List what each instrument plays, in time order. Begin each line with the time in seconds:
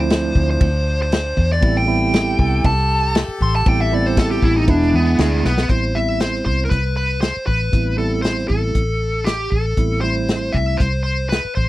Already playing: fingered electric bass D2, tine electric piano F3 A3 C4 E4, horn section F3 D4 C5
0.00 lead electric guitar C5
0.10 snare, ride bell
0.35 fingered electric bass D2, kick
0.50 lead electric guitar C5
0.61 fingered electric bass D2, kick, ride bell
1.02 lead electric guitar C5
1.12 snare, ride bell
1.37 fingered electric bass E2, kick
1.52 lead electric guitar D5, snare
1.61 fingered electric bass A1, tine electric piano G3 B3 C4 E4, horn section G4 A4, kick, ride bell
1.77 lead electric guitar G5
1.86 tine electric piano G3 B3 C4 E4
2.14 snare, ride bell
2.39 fingered electric bass C2, kick
2.64 fingered electric bass C2, lead electric guitar A5, kick, ride bell
3.15 snare, ride bell
3.28 muted fingered electric bass stroke
3.41 fingered electric bass A1, lead electric guitar C6, kick
3.56 lead electric guitar A5
3.66 fingered electric bass A1, tine electric piano G3 B3 C4 E4, lead electric guitar G5, kick, ride bell
3.81 lead electric guitar E5
3.91 tine electric piano G3 B3 C4 E4, lead electric guitar D5
4.06 lead electric guitar C5
4.17 lead electric guitar A4, kick, snare, ride bell
4.31 lead electric guitar G4, snare
4.42 fingered electric bass A1, lead electric guitar E4, kick
4.57 lead electric guitar D#4
4.67 fingered electric bass E1, tine electric piano G#3 B3 D4 E4, horn section D4 E4 G#4, lead electric guitar D4, kick, ride bell
4.82 snare
4.94 fingered electric bass E2, lead electric guitar B3
5.19 fingered electric bass D2, lead electric guitar G#4, snare, ride bell
5.44 fingered electric bass B1, lead electric guitar B4, snare
5.58 snare
5.69 fingered electric bass A1, tine electric piano G3 B3 C4 E4, lead electric guitar C5, kick, closed hi-hat
5.94 tine electric piano G3 B3 C4 E4, lead electric guitar E5
6.20 lead electric guitar C5, snare, closed hi-hat
6.34 snare
6.45 fingered electric bass C2, lead electric guitar C5, kick
6.65 lead electric guitar A#4
6.70 fingered electric bass C2, lead electric guitar B4, kick, closed hi-hat
6.96 lead electric guitar B4
7.21 lead electric guitar C5, snare, closed hi-hat
7.37 muted fingered electric bass stroke
7.46 fingered electric bass A1, lead electric guitar B4, kick
7.72 fingered electric bass A1, tine electric piano G3 B3 C4 E4, kick, closed hi-hat
7.97 tine electric piano G3 B3 C4 E4, lead electric guitar A4
8.22 lead electric guitar C5, snare, closed hi-hat
8.38 snare
8.48 fingered electric bass A1, lead electric guitar A4, kick
8.75 fingered electric bass A1, kick, closed hi-hat
9.25 lead electric guitar G4, snare, closed hi-hat
9.50 fingered electric bass A1, lead electric guitar A4, kick
9.77 fingered electric bass A1, tine electric piano G3 B3 C4 E4, kick, closed hi-hat
10.01 tine electric piano G3 A3 C4 E4, lead electric guitar C5
10.28 snare, closed hi-hat
10.52 fingered electric bass C2, lead electric guitar E5, kick
10.78 fingered electric bass C2, lead electric guitar C5, kick, closed hi-hat
11.03 lead electric guitar C5
11.29 lead electric guitar B4, snare, closed hi-hat
11.45 muted fingered electric bass stroke
11.55 fingered electric bass A1, lead electric guitar C5, kick